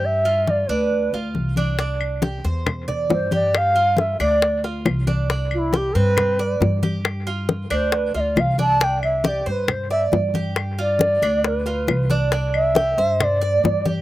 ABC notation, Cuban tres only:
X:1
M:4/4
L:1/8
Q:1/4=137
K:C
V:1 name="Cuban tres"
G F2 D2 F2 D | D2 G c2 d2 G- | G F2 D2 F2 D | D2 G C2 d2 G- |
G F2 D2 F2 D | D2 G c2 d2 G- | G F2 D2 F2 D | D2 G c2 d2 G |]